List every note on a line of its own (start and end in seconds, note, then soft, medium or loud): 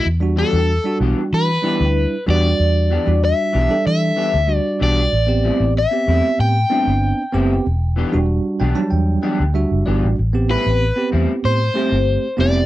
0.05 0.43 E2 medium
0.20 0.72 G3 medium
0.20 0.72 D4 medium
0.20 0.73 F#4 medium
0.36 0.56 E3 medium
0.36 0.56 B3 medium
0.36 0.57 D4 medium
0.36 0.57 G4 medium
0.36 0.97 A4 loud
0.53 0.78 E2 medium
0.84 1.48 G3 medium
0.84 1.49 D4 medium
0.84 1.50 F#4 medium
1.00 1.13 B1 medium
1.00 1.20 E3 medium
1.00 1.20 B3 medium
1.00 1.21 D4 medium
1.00 1.21 G4 medium
1.33 1.57 E3 medium
1.33 2.24 B4 medium
1.62 1.83 E3 medium
1.62 2.15 G3 medium
1.62 1.83 B3 medium
1.62 2.15 D4 medium
1.62 1.84 D4 medium
1.62 2.15 E4 medium
1.62 1.84 G4 medium
1.80 2.05 D2 medium
2.26 2.52 E2 medium
2.26 2.46 E3 medium
2.26 2.91 G3 medium
2.26 2.46 B3 medium
2.26 2.47 D4 medium
2.26 2.91 D4 medium
2.26 2.92 F#4 medium
2.26 2.47 G4 medium
2.26 3.24 D5 medium
2.60 2.96 E2 medium
2.90 3.10 E3 medium
2.90 3.10 B3 medium
2.90 3.11 D4 medium
2.90 3.11 G4 medium
3.06 3.32 E2 medium
3.06 3.57 G3 medium
3.06 3.58 D4 medium
3.06 3.58 F#4 medium
3.25 3.86 E5 medium
3.53 3.67 B1 medium
3.53 3.73 E3 medium
3.53 3.73 B3 medium
3.53 3.73 D4 medium
3.53 3.74 G4 medium
3.69 4.33 G3 medium
3.69 4.34 D4 medium
3.69 4.34 A4 medium
3.87 4.11 E3 medium
3.87 4.56 E5 medium
4.16 4.36 E3 medium
4.16 4.36 B3 medium
4.16 4.37 D4 medium
4.16 4.37 G4 medium
4.34 4.58 D2 medium
4.47 5.12 G3 medium
4.47 5.12 D4 medium
4.47 5.12 F#4 medium
4.56 4.83 D5 medium
4.80 5.06 B1 medium
4.80 4.99 E3 medium
4.80 5.00 B3 medium
4.80 5.00 D4 medium
4.80 5.01 G4 medium
4.80 5.73 D5 medium
5.13 5.50 A1 medium
5.27 5.78 B3 medium
5.27 5.79 C4 medium
5.27 5.79 G4 medium
5.43 5.63 A2 medium
5.43 5.64 G3 medium
5.43 5.64 C4 medium
5.43 5.64 E4 medium
5.60 5.85 A1 medium
5.78 6.40 E5 medium
5.91 6.55 B3 medium
5.91 6.55 C4 medium
5.91 6.56 G4 medium
6.07 6.20 E2 medium
6.07 6.26 A2 medium
6.07 6.27 G3 medium
6.07 6.27 C4 medium
6.07 6.27 E4 medium
6.39 6.64 A2 medium
6.39 8.25 G5 loud
6.70 6.90 A2 medium
6.70 6.90 G3 medium
6.70 7.21 B3 medium
6.70 7.22 C4 medium
6.70 6.90 C4 medium
6.70 7.22 D4 medium
6.70 6.90 E4 medium
6.87 7.11 G1 medium
7.32 7.58 F#1 medium
7.32 7.53 A2 medium
7.32 7.53 G3 medium
7.32 7.65 B3 medium
7.32 7.65 C4 medium
7.32 7.53 C4 medium
7.32 7.54 E4 medium
7.32 7.66 G4 loud
7.67 8.03 E1 medium
7.96 8.16 E3 medium
7.96 8.16 B3 medium
7.96 8.17 D4 medium
7.96 8.17 G4 medium
8.12 8.38 E1 medium
8.12 8.63 G3 medium
8.12 8.63 D4 medium
8.12 8.64 F#4 medium
8.60 8.73 B1 medium
8.60 8.79 E3 medium
8.60 8.79 B3 medium
8.60 8.80 D4 medium
8.60 8.80 G4 medium
8.60 8.75 G5 medium
8.75 9.40 F#3 medium
8.75 9.39 G3 medium
8.75 9.39 D4 medium
8.75 8.90 A5 medium
8.91 9.16 E2 medium
8.91 9.20 G5 medium
9.22 9.42 E3 medium
9.22 9.42 B3 medium
9.22 9.42 D4 medium
9.22 9.43 G4 medium
9.22 9.52 G5 medium
9.40 9.64 D2 medium
9.54 10.17 G3 medium
9.54 10.18 D4 medium
9.54 10.18 F#4 medium
9.54 9.84 E5 medium
9.71 9.85 F#1 medium
9.86 10.01 G1 medium
9.86 10.05 E3 medium
9.86 10.06 B3 medium
9.86 10.06 D4 medium
9.86 10.06 G4 medium
9.86 10.15 D5 medium
10.03 10.17 A1 medium
10.19 10.55 A1 medium
10.33 10.84 B3 medium
10.33 10.84 C4 medium
10.33 10.85 G4 medium
10.49 10.68 A2 medium
10.49 10.68 G3 medium
10.49 10.69 C4 medium
10.49 10.69 E4 medium
10.49 11.09 B4 loud
10.66 10.90 A1 medium
10.96 11.60 B3 medium
10.96 11.60 C4 medium
10.96 11.61 G4 medium
11.11 11.25 E2 medium
11.11 11.31 A2 medium
11.11 11.31 G3 medium
11.11 11.31 C4 medium
11.11 11.32 E4 medium
11.45 11.69 A2 medium
11.45 12.40 C5 medium
11.74 11.94 A2 medium
11.74 11.95 G3 medium
11.74 12.26 A3 medium
11.74 12.26 C4 medium
11.74 11.95 C4 medium
11.74 11.95 E4 medium
11.74 12.26 G4 medium
11.92 12.16 G1 medium
12.37 12.63 F1 medium
12.37 12.57 A2 medium
12.37 12.58 G3 medium
12.37 12.66 B3 medium
12.37 12.66 C4 medium
12.37 12.58 C4 medium
12.37 12.58 E4 medium
12.37 12.66 G4 medium
12.37 12.66 D5 medium